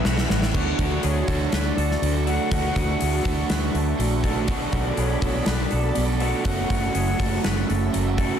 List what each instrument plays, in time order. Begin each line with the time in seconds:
Already playing: overdriven electric guitar E2 B2 E3 A3 B3 E4, string machine B4 E5 E6
0.04 fingered electric bass B1, overdriven electric guitar E3 A3 B3 E4, clean electric guitar F#4, snare
0.18 snare
0.30 fingered electric bass A1, clean electric guitar F#4, snare
0.42 snare
0.53 fingered electric bass D2, overdriven electric guitar D3 F#3 A3 D4 F#4, string machine D4 F#4 C#6, clean electric guitar F#4, kick, crash
0.79 fingered electric bass D2, kick, open hi-hat
1.03 fingered electric bass D2, clean electric guitar G#4, flute C#5, open hi-hat
1.27 fingered electric bass D2, overdriven electric guitar D3 F#3 A3 D4 F#4, clean electric guitar A4, kick, open hi-hat
1.52 fingered electric bass D2, clean electric guitar B4, flute C#5, snare, open hi-hat
1.64 flute D5
1.77 fingered electric bass D2, clean electric guitar A4, open hi-hat
1.91 snare
2.02 fingered electric bass D2, overdriven electric guitar D3 F#3 A3 D4 F#4, open hi-hat
2.27 overdriven electric guitar D3 A3 D4 F#4, clean electric guitar A4, flute F#5, open hi-hat
2.51 fingered electric bass D2, overdriven electric guitar D3 F#3 A3 D4 F#4, clean electric guitar F#4, string machine E5, flute F#5, kick, open hi-hat
2.76 fingered electric bass D2, kick, open hi-hat
3.01 fingered electric bass D2, clean electric guitar G#4, open hi-hat
3.24 fingered electric bass D2, overdriven electric guitar D3 F#3 A3 D4 F#4, clean electric guitar A4, kick
3.50 fingered electric bass D2, clean electric guitar B4, snare, open hi-hat
3.74 fingered electric bass D2, clean electric guitar A4, open hi-hat
3.97 fingered electric bass A#1, overdriven electric guitar D3 F#3 A3 D4 F#4, open hi-hat
4.24 overdriven electric guitar D3 A3 D4 F#4, clean electric guitar A4, kick, open hi-hat
4.47 fingered electric bass B1, overdriven electric guitar B2 F#3 B3 D4 F#4, clean electric guitar F#4, string machine A4 D5 B5, kick, open hi-hat
4.51 overdriven electric guitar D4 F#4
4.72 fingered electric bass B1, kick, open hi-hat
4.97 fingered electric bass B1, clean electric guitar G#4, flute C#5, open hi-hat
5.21 fingered electric bass B1, overdriven electric guitar B2 F#3 B3 D4 F#4, clean electric guitar A4, flute C#5, kick, open hi-hat
5.46 fingered electric bass B1, clean electric guitar B4, flute D5, snare, open hi-hat
5.71 fingered electric bass B1, clean electric guitar A4, open hi-hat
5.95 fingered electric bass B1, overdriven electric guitar B2 F#3 B3 D4 F#4, open hi-hat
6.20 overdriven electric guitar B2 F#3 B3 D4 F#4, clean electric guitar A4, flute F#5, open hi-hat
6.44 fingered electric bass F#1, overdriven electric guitar F#2 C#3 F#3 A3 C#4 F#4, clean electric guitar F#4, string machine F#4 E5 A5, flute F#5, kick, open hi-hat
6.70 fingered electric bass F#1, kick, open hi-hat
6.95 fingered electric bass F#1, clean electric guitar G#4, open hi-hat
7.18 fingered electric bass F#1, overdriven electric guitar F#2 C#3 F#3 A3 C#4 F#4, clean electric guitar A4, kick, open hi-hat
7.44 fingered electric bass F#1, clean electric guitar B4, snare, open hi-hat
7.68 fingered electric bass F#1, clean electric guitar A4, open hi-hat
7.92 fingered electric bass F#1, overdriven electric guitar F#2 C#3 F#3 A3 C#4 F#4, open hi-hat
8.18 overdriven electric guitar F#2 C#3 F#3 A3 C#4 F#4, clean electric guitar A4, kick, open hi-hat